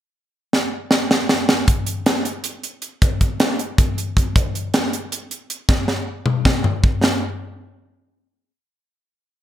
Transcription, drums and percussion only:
0.53 snare medium
0.91 snare medium
1.11 snare medium
1.29 snare medium
1.49 snare medium
1.68 kick loud
1.68 closed hi-hat medium
1.86 closed hi-hat medium
2.06 snare medium
2.06 closed hi-hat medium
2.25 closed hi-hat medium
2.44 closed hi-hat medium
2.63 closed hi-hat medium
2.82 closed hi-hat medium
3.02 kick loud
3.02 closed hi-hat medium
3.21 kick medium
3.21 closed hi-hat medium
3.40 snare loud
3.40 closed hi-hat medium
3.59 closed hi-hat medium
3.78 kick loud
3.78 closed hi-hat medium
3.98 closed hi-hat medium
4.17 kick medium
4.17 closed hi-hat medium
4.36 kick loud
4.36 closed hi-hat medium
4.55 closed hi-hat medium
4.74 snare medium
4.74 closed hi-hat medium
4.93 closed hi-hat medium
5.12 closed hi-hat medium
5.31 closed hi-hat medium
5.50 closed hi-hat medium
5.69 kick loud
5.69 snare soft
5.88 snare medium
6.26 mid tom medium
6.45 kick medium
6.45 snare medium
6.64 floor tom medium
6.84 kick medium
7.04 snare medium

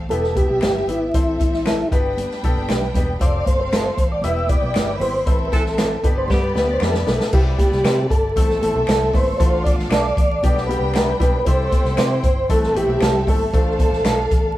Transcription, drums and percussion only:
0.09 closed hi-hat medium
0.09 muted conga soft
0.09 high conga medium
0.09 low conga medium
0.24 snare soft
0.35 kick medium
0.35 closed hi-hat medium
0.35 muted conga soft
0.35 high conga medium
0.49 high conga medium
0.61 finger snap medium
0.61 snare loud
0.61 closed hi-hat medium
0.75 low conga medium
0.88 closed hi-hat medium
0.88 muted conga soft
0.88 high conga medium
0.88 low conga medium
1.14 kick loud
1.14 closed hi-hat medium
1.14 muted conga soft
1.40 kick medium
1.40 closed hi-hat medium
1.40 muted conga soft
1.40 high conga medium
1.53 snare soft
1.66 finger snap loud
1.66 snare loud
1.66 closed hi-hat medium
1.92 kick loud
1.92 closed hi-hat medium
1.92 muted conga soft
1.92 high conga soft
2.18 closed hi-hat medium
2.18 muted conga soft
2.18 high conga medium
2.18 low conga medium
2.31 snare soft
2.43 kick medium
2.43 closed hi-hat medium
2.43 high conga medium
2.57 high conga medium
2.69 finger snap medium
2.69 snare loud
2.69 closed hi-hat medium
2.69 muted conga soft
2.81 low conga medium
2.94 kick medium
2.94 closed hi-hat medium
2.94 muted conga soft
2.94 high conga medium
2.94 low conga medium
3.20 kick loud
3.20 closed hi-hat medium
3.20 muted conga soft
3.46 kick medium
3.46 closed hi-hat medium
3.46 muted conga soft
3.46 high conga medium
3.73 finger snap loud
3.73 snare loud
3.73 closed hi-hat medium
3.97 kick medium
3.97 closed hi-hat medium
3.97 high conga soft
4.22 closed hi-hat medium
4.22 high conga medium
4.22 low conga medium
4.47 kick medium
4.47 closed hi-hat medium
4.47 high conga medium
4.62 high conga medium
4.74 finger snap medium
4.74 snare loud
4.74 closed hi-hat medium
4.74 muted conga soft
4.87 low conga medium
5.00 open hi-hat medium
5.00 high conga medium
5.00 low conga medium
5.27 kick loud
5.27 closed hi-hat medium
5.52 kick medium
5.52 closed hi-hat medium
5.52 muted conga soft
5.52 high conga medium
5.66 snare soft
5.78 finger snap loud
5.78 snare loud
5.78 closed hi-hat medium
5.78 muted conga soft
6.03 kick medium
6.03 closed hi-hat medium
6.03 muted conga soft
6.03 high conga soft
6.28 kick medium
6.28 snare medium
6.28 muted conga soft
6.28 high conga medium
6.28 low conga medium
6.55 snare medium
6.55 muted conga soft
6.55 high conga medium
6.69 high conga medium
6.80 finger snap medium
6.80 snare medium
6.94 snare medium
6.94 low conga medium
7.07 snare loud
7.07 muted conga soft
7.07 high conga medium
7.07 low conga medium
7.20 snare medium
7.33 kick loud
7.33 crash medium
7.33 muted conga soft
7.59 kick medium
7.59 closed hi-hat medium
7.59 muted conga soft
7.59 high conga medium
7.72 snare soft
7.84 finger snap medium
7.84 snare loud
7.84 closed hi-hat medium
7.84 muted conga soft
8.10 kick medium
8.10 closed hi-hat medium
8.10 muted conga soft
8.10 high conga soft
8.36 kick medium
8.36 closed hi-hat medium
8.36 muted conga soft
8.36 high conga medium
8.36 low conga medium
8.50 snare soft
8.62 closed hi-hat medium
8.62 muted conga soft
8.62 high conga medium
8.76 high conga medium
8.87 finger snap medium
8.87 snare loud
8.87 closed hi-hat medium
9.02 low conga medium
9.13 kick medium
9.13 open hi-hat medium
9.13 muted conga soft
9.13 high conga medium
9.13 low conga medium
9.40 kick loud
9.40 closed hi-hat medium
9.40 muted conga soft
9.65 kick medium
9.65 closed hi-hat medium
9.65 muted conga soft
9.65 high conga medium
9.79 snare soft
9.91 finger snap loud
9.91 snare loud
9.91 closed hi-hat medium
9.91 muted conga soft
10.17 kick medium
10.17 closed hi-hat medium
10.17 muted conga soft
10.17 high conga soft
10.43 kick medium
10.43 closed hi-hat medium
10.43 muted conga soft
10.43 high conga medium
10.43 low conga medium
10.57 snare soft
10.69 closed hi-hat medium
10.69 high conga medium
10.82 high conga medium
10.94 finger snap medium
10.94 snare loud
10.94 closed hi-hat medium
11.08 low conga medium
11.20 kick medium
11.20 closed hi-hat medium
11.20 muted conga soft
11.20 high conga medium
11.20 low conga medium
11.46 kick loud
11.46 closed hi-hat medium
11.46 muted conga soft
11.72 kick medium
11.72 closed hi-hat medium
11.72 muted conga soft
11.72 high conga medium
11.85 snare soft
11.97 finger snap loud
11.97 snare loud
11.97 closed hi-hat medium
12.23 kick medium
12.23 closed hi-hat medium
12.23 muted conga soft
12.23 high conga soft
12.49 kick medium
12.49 closed hi-hat medium
12.49 high conga medium
12.49 low conga medium
12.63 snare soft
12.75 closed hi-hat medium
12.75 muted conga soft
12.75 high conga medium
12.90 high conga medium
13.00 finger snap medium
13.00 snare loud
13.00 closed hi-hat medium
13.00 muted conga soft
13.14 low conga medium
13.27 kick medium
13.27 open hi-hat medium
13.27 muted conga soft
13.27 high conga medium
13.27 low conga medium
13.54 kick loud
13.54 closed hi-hat medium
13.54 muted conga soft
13.79 kick medium
13.79 closed hi-hat medium
13.79 muted conga soft
13.79 high conga medium
13.93 snare soft
14.05 finger snap loud
14.05 snare loud
14.05 closed hi-hat medium
14.30 kick medium
14.30 closed hi-hat medium
14.30 muted conga soft
14.30 high conga soft

